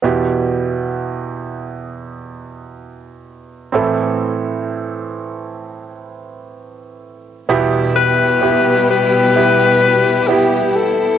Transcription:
X:1
M:4/4
L:1/8
Q:1/4=64
K:Ephr
V:1 name="Alto saxophone"
z8 | z8 | z B2 B3 G A |]
V:2 name="Grand piano"
[B,EG]8 | [CEA]8 | [B,EG]2 [B,EG]2 [B,EG]2 [B,EG]2 |]
V:3 name="Grand piano" clef=bass
[E,,B,,]8 | [A,,E,]8 | [E,,B,,]8 |]
V:4 name="String section"
z8 | z8 | [B,,G,EG]8 |]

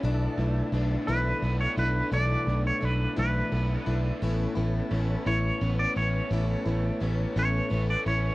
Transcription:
X:1
M:6/8
L:1/16
Q:3/8=57
K:A
V:1 name="Clean electric guitar"
z6 B3 c B2 | d3 c B2 B4 z2 | z6 c3 d c2 | z6 c3 d c2 |]
V:2 name="Tonewheel organ"
[DEA]12- | [DEA]12 | [B,CA]12- | [B,CA]12 |]
V:3 name="Steel-string acoustic guitar"
[B,,E,A,B,DE]2 [A,B,DE]2 [A,B,DE]2 [B,,E,A,B,DE]2 [A,B,DE]2 [A,B,DE]2 | [B,,E,A,B,DE]2 [A,B,DE]2 [A,B,DE]2 [B,,E,A,B,DE]2 [A,B,DE]2 [A,B,DE]2 | [A,,A,B,CE]2 [B,CE]2 [A,B,CE]2 [A,,A,B,CE]2 [A,B,CE]2 [B,CE]2 | [A,,A,B,CE]2 [B,CE]2 [A,B,CE]2 [A,,A,B,CE]2 [A,B,CE]2 [B,CE]2 |]
V:4 name="Overdriven electric guitar"
B,,2 A,2 D2 A,2 B,2 D2 | B,,2 A,2 D2 A,2 B,2 D2 | A,,2 A,2 C2 A,2 B,2 C2 | A,,2 A,2 C2 A,2 B,2 C2 |]
V:5 name="Fingered electric bass" clef=bass
B,,,2 B,,,2 B,,,2 B,,,2 B,,,2 B,,,2 | B,,,2 B,,,2 B,,,2 B,,,2 B,,,2 B,,,2 | A,,,2 A,,,2 A,,,2 A,,,2 A,,,2 A,,,2 | A,,,2 A,,,2 A,,,2 A,,,2 A,,,2 A,,,2 |]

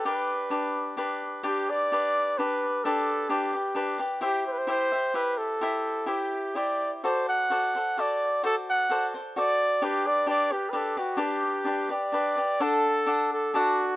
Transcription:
X:1
M:3/4
L:1/16
Q:1/4=130
K:G
V:1 name="Cavaquinho"
[DGBd]4 [DGBd]4 [DGBd]4 | [DGBd]4 [DGBd]4 [DGBd]4 | [DGBd]4 [DGBd]2 [GBd]2 [DGBd]2 [GBd]2 | [EGce]4 [EGce]2 [Gce]2 [EGce]4 |
[EGce]4 [EGce]4 [EGce]4 | [FAcd]4 [FAcd]2 [Acd]2 [FAcd]4 | [FAcd]4 [FAcd]2 [Acd]2 [FAcd]4 | [DGBd]4 [DGBd]2 [GBd]2 [DGBd]2 [GBd]2 |
[DGBd]4 [DGBd]2 [GBd]2 [DGBd]2 [GBd]2 | [K:D] [DAdf]4 [DAdf]4 [DAdf]4 |]
V:2 name="Trumpet"
B8 z4 | G2 d6 B4 | A4 G6 z2 | G2 c/2 B/2 c c4 B2 A2- |
A4 G4 d3 z | c2 f6 d4 | A2 f3- f/2 z2 z/2 d4 | G2 d2 d2 G3/2 B/2 A2 F2 |
G6 d6 | [K:D] A6 A2 F4 |]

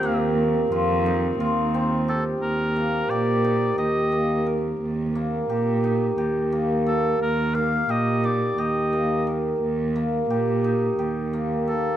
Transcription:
X:1
M:7/8
L:1/16
Q:1/4=88
K:Eb
V:1 name="Oboe"
g z8 z3 =A2 | B4 d4 e4 z2 | z12 =A2 | B2 f2 e2 d2 e4 z2 |
z12 =A2 |]
V:2 name="Hammered dulcimer"
B,4 F2 E2 F2 C2 G2 | z2 B,2 G2 E2 G2 B,2 B2 | z2 B,2 G2 E2 G2 B,2 B,2 | z2 B,2 G2 E2 G2 B,2 B2 |
z2 B,2 G2 E2 G2 B,2 B,2 |]
V:3 name="Woodwind section"
[E,B,C]12- [E,B,C]2 | z12 z2 | z12 z2 | z12 z2 |
z12 z2 |]
V:4 name="Cello" clef=bass
E,,4 F,,4 E,,6 | E,,4 B,,4 E,,6 | E,,4 B,,4 E,,6 | E,,4 B,,4 E,,6 |
E,,4 B,,4 E,,6 |]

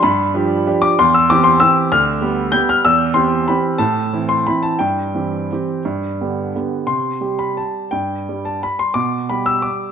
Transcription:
X:1
M:3/4
L:1/8
Q:1/4=178
K:C
V:1 name="Grand piano"
b4- b d' | c' e' d' c' e'2 | f'4 g' f' | e'2 c'2 b2 |
a3 c' b a | g6- | g4 z2 | c'3 b a2 |
g3 a b c' | d'2 b e' d'2 |]
V:2 name="Grand piano"
G,,2 [F,DG]2 [F,DG]2 | E,,2 [E,CG]2 [E,CG]2 | D,,2 [G,B,G]2 [G,B,G]2 | E,,2 [E,CG]2 [E,CG]2 |
A,,2 [E,CE]2 [E,CE]2 | G,,2 [E,CG]2 [E,CG]2 | G,,2 [D,B,G]2 [D,B,G]2 | C,2 [G,G]4 |
G,,2 [G,G]4 | B,,2 [G,G]4 |]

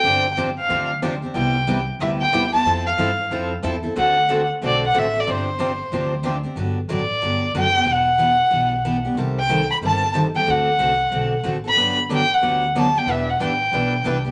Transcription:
X:1
M:4/4
L:1/8
Q:"Swing" 1/4=184
K:Gmix
V:1 name="Violin"
g2 z f2 z3 | g3 z e g2 a- | a f4 z3 | ^f3 z d f e d |
c6 z2 | [K:G] z2 d4 g2 | f6- f z | z g2 b a2 z g |
f6 z b- | b z g f2 z a g | e f g4- g z |]
V:2 name="Steel-string acoustic guitar"
[C,F,CDG] z [C,F,CDG] z [C,F,CDG] z [C,F,CDG] [CDG] | [C,G,B,EG] z [C,G,B,EG] z [C,G,B,EG] z [C,G,B,EG] [B,EG] | [F,CEA] z [F,CEA] z [F,CEA] z [F,CEA] [CEA] | [D,A,C^FA] z [D,A,CFA] z [D,A,CFA] z [D,A,CFA] [CFA] |
[C,F,CDG] z [C,F,CDG] z [C,F,CDG] z [C,F,CDG] [CDG] | [K:G] [D,F,B,DG] z [D,F,B,DG] z [D,F,B,DG] z [D,F,B,DG] [B,DG] | [E,B,DG] z [E,B,DG] z [E,B,DG] z [E,B,DG] [B,DG] | [C,_E,G,CGA] z [C,E,G,CGA] z [C,E,G,CGA] z [C,E,G,CGA] [G,CGA] |
[D,A,CFA] z [D,A,CFA] z [D,A,CFA] z [D,A,CFA] [CFA] | [D,F,B,DG] z [D,F,B,DG] z [D,F,B,DG] z [D,F,B,DG] [B,DG] | [E,B,DG] z [E,B,DG] z [E,B,DG] z [E,B,DG] [B,DG] |]
V:3 name="Steel-string acoustic guitar"
[C,F,CDG] z [C,F,CDG] z [C,F,CDG] z [C,F,CDG] z | [C,G,B,EG] z [C,G,B,EG] z [C,G,B,EG] z [C,G,B,EG] z | [F,CEA] z [F,CEA] z [F,CEA] z [F,CEA] z | [D,A,C^FA] z [D,A,CFA] z [D,A,CFA] z [D,A,CFA] z |
[C,F,CDG] z [C,F,CDG] z [C,F,CDG] z [C,F,CDG] z | [K:G] z8 | z8 | z8 |
z8 | [D,F,B,DG] z [D,F,B,DG] z [D,F,B,DG] z [D,F,B,DG] z | [E,G,DEB] z [E,G,DEB] z [E,G,DEB] z [E,G,DEB] z |]
V:4 name="Upright bass" clef=bass
G,,,4 D,,4 | C,,4 D,,2 E,,2 | F,,2 G,,2 F,,2 E,,2 | D,,4 B,,,2 A,,,2 |
G,,,4 D,,4 | [K:G] G,,,2 A,,,2 G,,,2 F,,,2 | E,,,4 B,,,4 | C,,4 G,,,4 |
D,,2 C,,2 B,,,2 A,,,2 | G,,,4 D,,4 | E,,,2 A,,,2 B,,,2 C,,2 |]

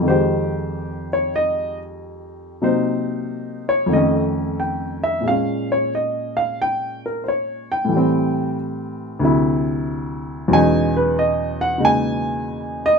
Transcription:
X:1
M:4/4
L:1/8
Q:"Swing" 1/4=93
K:Fm
V:1 name="Upright piano"
c3 d e z3 | c3 d e z g _f | f d e f g B [cd] g- | g2 z6 |
^g =B ^d ^f g3 d |]
V:2 name="Upright piano" clef=bass
[F,,E,A,G]8 | [C,_G,B,E]4 [F,,E,=A,D]4 | [B,,A,B,D]8 | [=A,,=E,G,C]4 [=D,,C,^F,=E]4 |
[=E,,=B,,^F,^G,^C^D]4 [^C,G,_B,D]4 |]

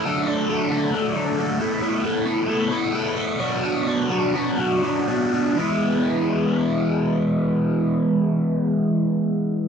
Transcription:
X:1
M:4/4
L:1/8
Q:1/4=123
K:Emix
V:1 name="Overdriven electric guitar"
[D,F,A,DA] [D,F,A,DA] [D,F,A,DA] [D,F,A,DA] [D,F,A,DA] [D,F,A,DA] [D,F,A,DA] [A,B,EA] | [A,B,EA] [A,B,EA] [A,B,EA] [A,B,EA] [A,B,EA] [A,B,EA] [A,B,EA] [B,,F,B,DF] | [B,,F,B,DF] [B,,F,B,DF] [B,,F,B,DF] [B,,F,B,DF] [B,,F,B,DF] [B,,F,B,DF] [B,,F,B,DF] [B,,F,B,DF] | [E,G,B,E]8- |
[E,G,B,E]8 |]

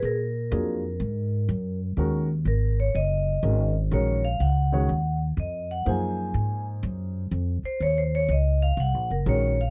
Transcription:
X:1
M:4/4
L:1/8
Q:"Swing" 1/4=124
K:Cphr
V:1 name="Vibraphone"
B6- B z | [K:Ebdor] z2 B d e3 z | d f g3 z e g | a3 z4 c |
(3d c d e f g B d f |]
V:2 name="Grand piano"
z2 [_G,B,=DFA] z4 z | [K:Ebdor] [E,A,DGB] z4 z [E,A,DGB] z | [E,A,DGB] z2 [E,A,DGd] z4 | [F,B,EAc]4- [F,B,EAc] z3 |
z6 [E,A,DGB] z |]
V:3 name="Upright bass" clef=bass
B,,2 F,,2 A,,2 _G,,2 | [K:Ebdor] E,,2 A,,,2 G,,,2 A,,,2 | B,,,2 D,,2 E,,2 F,,2 | G,,2 A,,2 G,,2 F,, z |
E,,2 D,,2 (3C,, B,,, G,,, B,,,2 |]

